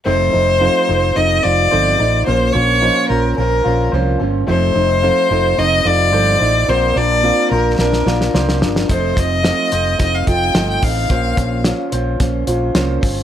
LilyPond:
<<
  \new Staff \with { instrumentName = "Violin" } { \time 4/4 \key f \mixolydian \tempo 4 = 109 c''2 ees''8 d''4. | c''8 des''4 bes'8 bes'4 r4 | c''2 ees''8 d''4. | c''8 d''4 bes'8 bes'4 r4 |
c''8 ees''4. ees''16 f''16 g''8. g''16 f''8~ | f''4 r2. | }
  \new Staff \with { instrumentName = "Clean electric guitar" } { \time 4/4 \key f \mixolydian <a c''>8 ees'8 f'8 c''8 ees'8 f'8 c''8 ees'8 | bes8 des'8 ees'16 f'16 c''8 des'8 f'8 c''8 des'8 | <a c''>8 ees'8 f'8 c''8 ees'8 f'8 c''8 ees'8 | <bes c''>8 d'8 f'8 c''8 d'8 f'8 c''8 d'8 |
<a c''>8 ees'8 f'8 c''8 ees'8 f'8 c''8 ees'8 | <bes c''>8 des'8 f'8 c''8 des'8 f'8 c''8 des'8 | }
  \new Staff \with { instrumentName = "Steel-string acoustic guitar" } { \time 4/4 \key f \mixolydian <f c' ees' a' c''>8 <ees' a' c''>8 <f c' ees' a' c''>8 <ees' a' c''>8 <c' ees' a' c''>8 <ees' a' c''>8 <f c' ees' a' c''>8 <ees' a' c''>8 | <bes, f bes des' f' c''>8 <bes des' f' c''>8 <bes, f bes des' f' c''>8 <bes des' f' c''>8 <bes des' f' c''>8 <bes des' f' c''>8 <bes, f bes des' f' c''>8 <bes des' f' c''>8 | <f c' ees' a' c''>8 <ees' a' c''>8 <f c' ees' a' c''>8 <ees' a' c''>8 <c' ees' a' c''>8 <ees' a' c''>8 <f c' ees' a' c''>8 <ees' a' c''>8 | <bes c' f' bes' d''>8 <f' bes' d''>8 <bes c' f' bes' d''>8 <f' bes' d''>8 <c' f' bes' d''>8 <f' bes' d''>8 <bes c' f' bes' d''>8 <f' bes' d''>8 |
<f a c' f' a' ees''>8 <c' f' a' ees''>8 <f a c' f' a' ees''>8 <c' f' a' ees''>8 <c' f' a' ees''>8 <c' f' a' ees''>8 <f a c' f' a' ees''>8 <c' f' a' ees''>8 | <bes des' f' c''>8 <des' f' c''>8 <bes des' f' c''>8 <des' f' c''>8 <bes des' f' c''>8 <des' f' c''>8 <bes des' f' c''>8 <des' f' c''>8 | }
  \new Staff \with { instrumentName = "Fingered electric bass" } { \clef bass \time 4/4 \key f \mixolydian f,,8 f,,8. r16 f,,8 f,,8 f,,8 g,,8 a,,8 | bes,,8 bes,,8. r16 bes,,8 bes,,8 bes,,8 c,8 g,,8 | f,,8 f,,8. r16 f,,8 f,,8 f,,8 g,,8 a,,8 | bes,,8 bes,,8. r16 bes,,8 bes,,8 bes,,8 c,8 g,,8 |
f,,8 f,,8. r16 f,,8 f,,8 f,,8 g,,8 a,,8 | bes,,8 bes,,8. r16 bes,,8 bes,,8 bes,,8 c,8 g,,8 | }
  \new DrumStaff \with { instrumentName = "Drums" } \drummode { \time 4/4 r4 r4 r4 r4 | r4 r4 r4 r4 | r4 r4 r4 r4 | r4 r4 sn16 sn16 sn16 sn16 sn16 sn16 sn16 sn16 |
<hh bd>8 <hh bd>8 <hh sn>8 hh8 <hh bd sn>8 <hh bd>8 <hh sn>8 <hho bd>8 | <hh bd>8 <hh bd>8 <hh sn>8 hh8 <hh bd sn>8 hh8 <hh sn>8 <hho bd>8 | }
>>